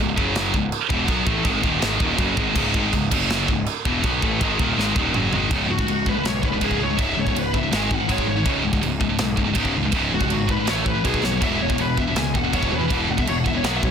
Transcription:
0.00 C#1 C#2 G#2
0.16 F#1 F#2 C#3 F#3, kick
0.35 snare, china
0.54 C#1 C#2 G#2, kick
0.72 china
0.89 E1 E2 B2 E3, kick
1.07 B1 B2 F#3 B3, kick, china
1.26 A1 A2 E3 A3, kick
1.44 G#1 G#2 D#3 G#3, kick, china
1.62 D#1 D#2 A#2 D#3, kick
1.81 G#1 G#2 D#3 G#3, snare, china
2.00 D#1 D#2 A#2 D#3, kick
2.18 F#1 F#2 C#3 F#3, kick, china
2.36 G#1 G#2 D#3 G#3, kick
2.55 C#1 C#2 G#2 C#3, kick, crash, china
2.74 G#1 G#2 D#3 G#3, kick
2.93 C#1 C#2 G#2, kick, china
3.11 F#1 F#2 C#3 F#3, kick, crash
3.30 snare, china
3.48 C#1 C#2 G#2, kick
3.66 china
3.85 E1 E2 B2 E3, kick
4.03 B1 B2 F#3 B3, kick, china
4.22 A1 A2 E3 A3, kick
4.41 G#1 G#2 D#3 G#3, kick, china
4.59 D#1 D#2 A#2 D#3, kick
4.78 G#1 G#2 D#3 G#3, snare
4.96 D#1 D#2 A#2 D#3, kick
5.13 F#1 F#2 C#3 F#3, mid tom
5.32 G#1 G#2 D#3 G#3, floor tom
5.50 C#1 C#2 G#2 C#3, kick, crash
5.69 C#1 C#2 G#2 F#4
5.79 C#2 G#2, kick
5.87 C#1 C#2 G#2, crash
6.06 C#2 G#2 B4, kick
6.17 C#2 G#2
6.25 B1 C#2 G#2 C#5, snare, crash
6.43 C#1 C#2 G#2 B4, kick
6.53 C#2 G#2
6.61 C#1 C#2 G#2 C#3 G#4, kick, crash
6.71 kick
6.80 C#2 G#2 C#5
6.90 C#2 G#2
6.99 C#1 C#2 G#2 C#3 E5, kick, crash
7.17 C#1 C#2 G#2 C#5
7.27 C#2 G#2, kick
7.36 C#1 C#2 G#2 B4, crash
7.54 C#2 G#2 E5, kick
7.63 C#2 G#2
7.72 G#1 G#2 D#3 G#3 G#5, snare, crash
7.91 G#1 G#2 D#3 F#5, kick
7.99 G#2 D#3
8.08 G#1 G#2 D#3 G#3 C#5, kick, crash
8.18 kick
8.27 G#1 G#2 D#3 C#5
8.37 G#2 D#3
8.45 C#1 C#2 G#2 C#3, kick, crash
8.63 C#1 C#2 G#2
8.73 C#2 G#2, kick
8.82 C#1 C#2 G#2, crash
9.00 C#2 G#2, kick
9.10 C#2 G#2
9.18 B1 C#2 G#2, snare, crash
9.37 C#1 C#2 G#2, kick
9.47 C#2 G#2
9.55 C#1 C#2 G#2 C#3, kick, crash
9.65 kick
9.76 C#2 G#2
9.85 C#2 G#2
9.92 C#1 C#2 G#2 C#3, kick, crash
10.12 C#1 C#2 G#2 F#4
10.21 C#2 G#2, kick
10.30 G#1 C#2 G#2, crash
10.49 C#2 G#2 B4, kick
10.59 C#2 G#2
10.67 A1 A2 E3 A3 C#5, snare, crash
10.85 A1 A2 E3 B4, kick
10.95 A2 E3
11.04 B1 B2 F#3 B3 G#4, kick, crash
11.14 kick
11.23 B1 B2 F#3 C#5, snare
11.31 B2 F#3
11.41 E1 E2 B2 E3 E5, kick, crash
11.61 E1 E2 B2 C#5
11.70 E2 B2, kick
11.78 E1 E2 B2 B4, crash
11.97 E2 B2 E5, kick
12.08 E2 B2
12.15 C#2 E2 B2 G#5, snare, crash
12.34 E1 E2 B2 F#5, kick
12.44 E2 B2
12.53 E1 E2 B2 E3 C#5, kick, crash
12.63 kick
12.72 E2 B2 B4
12.81 E2 B2
12.90 E1 E2 B2 E3, kick, crash
13.09 E1 E2 B2 F#5
13.18 E2 B2 E5, kick
13.27 E1 E2 B2 C#5, crash
13.37 F#5
13.46 E2 B2 E5, kick
13.55 E2 B2 C#5
13.64 B1 B2 F#3 B3 F#5, snare, crash
13.76 E5
13.82 B1 B2 F#3 C#5, kick

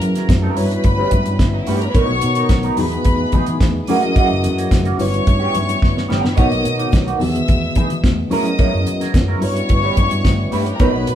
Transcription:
Already playing: E3 F#3 A#3 C#4 E4 F#4 G#4 A#4 A#5
0.01 F#3, muted clean electric guitar stroke, closed hi-hat
0.15 C#4 E4 A#4, snare, closed hi-hat
0.28 F#2, muted clean electric guitar stroke, kick, snare, closed hi-hat, high conga
0.42 C#4 E4 A#4
0.55 G2 G3 B3 E4 F#4 B4 C#5 B5, muted clean electric guitar stroke, open hi-hat
0.70 muted clean electric guitar stroke, closed hi-hat
0.84 G1, muted clean electric guitar stroke, kick, closed hi-hat, muted conga
0.98 C#4 G4 B4
1.11 G2, muted clean electric guitar stroke, kick, closed hi-hat, muted conga, low conga
1.26 G2, muted clean electric guitar stroke, closed hi-hat
1.39 G1, kick, snare, closed hi-hat, high conga
1.53 D#4 D#5, muted clean electric guitar stroke
1.60 E4 E5
1.67 G2 C#4 F#4 G4 B4 F#5, open hi-hat, high conga
1.74 G4 G5
1.81 A#4 A#5, muted clean electric guitar stroke, closed hi-hat
1.87 B4 B5
1.94 B1 B2 D#3 F#3 B3 D#4 F#4 A#4 C#5 C#6, kick, closed hi-hat, muted conga
2.09 B1, muted clean electric guitar stroke
2.21 B2, muted clean electric guitar stroke, closed hi-hat
2.35 B3 D#4 A#4, closed hi-hat
2.49 B1, muted clean electric guitar stroke, kick, snare, closed hi-hat, high conga
2.63 B3 D#4 A#4, closed hi-hat
2.76 E2 E3 G#3 B3 D#4 F#4 G#4 B4 B5, muted clean electric guitar stroke, open hi-hat, low conga
2.92 muted clean electric guitar stroke, closed hi-hat
3.05 E2, kick, closed hi-hat, muted conga
3.20 muted clean electric guitar stroke
3.32 E3 B3 D#4 G#4, kick, closed hi-hat, muted conga, low conga
3.47 E3, muted clean electric guitar stroke, closed hi-hat
3.60 E2, muted clean electric guitar stroke, kick, snare, closed hi-hat, high conga
3.75 muted clean electric guitar stroke
3.87 E3 F#3 A#3 C#4 E4 F#4 G#4 A#4 D#5 D#6, open hi-hat, high conga
4.02 muted clean electric guitar stroke, closed hi-hat
4.16 A#3 E4 F#4, kick, closed hi-hat, muted conga
4.30 F#1, muted clean electric guitar stroke
4.43 F#2, muted clean electric guitar stroke, closed hi-hat, muted conga
4.57 A#3 E4 F#4, closed hi-hat
4.71 F#1, muted clean electric guitar stroke, kick, snare, closed hi-hat, high conga
4.85 A#3 E4 F#4, closed hi-hat
4.98 G1 G3 B3 E4 F#4 B4 C#5 C#6, muted clean electric guitar stroke, open hi-hat, low conga
5.12 muted clean electric guitar stroke, closed hi-hat
5.26 G2, muted clean electric guitar stroke, kick, closed hi-hat, muted conga
5.40 B3 C#4 G4
5.54 G2, muted clean electric guitar stroke, closed hi-hat, muted conga, low conga
5.67 muted clean electric guitar stroke, closed hi-hat
5.82 G1, kick, snare, high conga
5.95 G2, muted clean electric guitar stroke, snare
6.08 G1 B3 C#4 G4 G5, snare, high conga
6.18 A#4 A#5
6.23 G2 B4 B5, muted clean electric guitar stroke, snare
6.32 A#3 C#5 C#6
6.36 B1 B2 D#3 F#3 B3 D#4 F#4 A#4 C#5 D#5 D#6, kick, closed hi-hat, muted conga
6.50 B1, muted clean electric guitar stroke, closed hi-hat
6.64 B2, muted clean electric guitar stroke, closed hi-hat, muted conga
6.77 A#3 D#4 F#4, closed hi-hat
6.92 B1, muted clean electric guitar stroke, kick, snare, closed hi-hat, high conga
7.06 A#3 D#4 F#4, closed hi-hat
7.20 E2 B2 D#3 E3 G#3 B3 F#4 G4 G#4 E5 E6, open hi-hat, low conga
7.29 G#4
7.35 muted clean electric guitar stroke, closed hi-hat
7.48 E2, kick, closed hi-hat, muted conga
7.62 muted clean electric guitar stroke
7.75 E3 B3 D#4 G#4, kick, closed hi-hat, muted conga, low conga
7.90 E3, muted clean electric guitar stroke, closed hi-hat
8.04 E2, muted clean electric guitar stroke, kick, snare, closed hi-hat, high conga
8.17 muted clean electric guitar stroke
8.30 F#3 A#3 C#4 E4 F#4 G#4 A#4 D#5 D#6, open hi-hat, high conga
8.45 muted clean electric guitar stroke, closed hi-hat
8.59 C#4 E4 A#4, kick, closed hi-hat, muted conga
8.72 F#2, muted clean electric guitar stroke
8.87 F#3, muted clean electric guitar stroke, closed hi-hat
9.01 C#4 E4 A#4, snare, closed hi-hat
9.14 F#2, muted clean electric guitar stroke, kick, snare, closed hi-hat, high conga
9.28 C#4 E4 A#4
9.41 G2 G3 B3 E4 F#4 B4 C#5 C#6, muted clean electric guitar stroke, open hi-hat
9.55 muted clean electric guitar stroke, closed hi-hat
9.69 G1, muted clean electric guitar stroke, kick, closed hi-hat, muted conga
9.83 C#4 G4 B4
9.97 G2, muted clean electric guitar stroke, kick, closed hi-hat, muted conga, low conga
10.11 G2, muted clean electric guitar stroke, closed hi-hat
10.25 G1, kick, snare, closed hi-hat, high conga
10.38 muted clean electric guitar stroke
10.52 G2 C#4 E4 G4 B4 E5, open hi-hat, high conga
10.59 F#4 F#5
10.65 G4 G5, muted clean electric guitar stroke, closed hi-hat
10.74 A#4 A#5
10.79 B1 B2 D#3 F#3 B3 D#4 F#4 A#4 B4 C#5 B5, kick, closed hi-hat, muted conga
10.93 B1, muted clean electric guitar stroke
11.06 B2, muted clean electric guitar stroke, closed hi-hat, muted conga

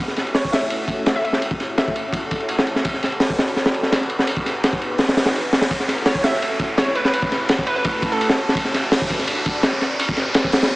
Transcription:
0.00 A3 C#4 E4 F#4 A4, riser
0.08 snare
0.16 snare, ride
0.27 ride
0.35 C#5, snare, open hi-hat
0.45 kick
0.52 E5, snare, open hi-hat
0.62 snare
0.70 ride
0.88 kick, ride
1.06 snare, ride
1.16 E5, snare
1.24 E5, ride
1.33 snare
1.42 A3 C#4 E4 F#4 A4, ride
1.51 kick
1.60 snare, ride
1.78 E5, snare, ride
1.88 kick
1.96 ride
2.13 kick, ride
2.31 kick, ride
2.40 ride
2.49 ride
2.59 snare
2.67 ride
2.76 snare
2.85 D4 F#4 A4 B4 D5, kick, ride
2.94 snare
3.03 snare, ride
3.12 ride
3.20 snare, open hi-hat
3.30 kick
3.39 snare
3.48 ride
3.56 snare
3.66 snare
3.74 ride
3.83 snare
3.92 snare, ride
4.01 snare
4.10 ride
4.19 snare
4.27 B3 D#4 F#4 G#4 B4, ride
4.37 kick
4.46 snare, ride
4.64 snare, ride
4.73 kick
4.82 ride
4.98 snare, open hi-hat
5.09 snare, open hi-hat
5.17 snare, open hi-hat
5.26 snare, open hi-hat
5.36 ride
5.53 snare, open hi-hat
5.62 snare, open hi-hat
5.70 A3 C#4 E4 F#4 A4, kick, ride
5.80 snare
5.88 snare, ride
5.98 ride
6.06 C#5, snare, open hi-hat
6.15 kick
6.24 E5, snare, open hi-hat
6.34 snare
6.42 ride
6.59 kick, ride
6.78 C#5, snare, ride
6.88 snare
6.95 B4, ride
7.05 B4, snare
7.13 A3 C#4 E4 F#4 A4, ride
7.22 kick
7.32 snare, ride
7.49 snare, ride
7.59 kick
7.67 B4, ride
7.76 B4
7.84 kick, ride
8.02 kick, ride
8.12 A4, ride
8.21 ride
8.29 snare
8.38 ride
8.49 snare
8.55 D4 F#4 A4 B4 D5, kick, ride
8.65 snare
8.74 snare, ride
8.83 ride
8.92 snare, open hi-hat
9.02 kick
9.10 kick, ride
9.19 snare
9.27 ride
9.46 kick, ride
9.63 snare, ride
9.73 snare
9.81 snare, ride
9.91 ride
9.98 B3 D#4 F#4 G#4 B4, ride
10.09 kick
10.16 snare, ride
10.34 snare, ride
10.44 kick
10.52 snare, open hi-hat
10.62 snare, open hi-hat

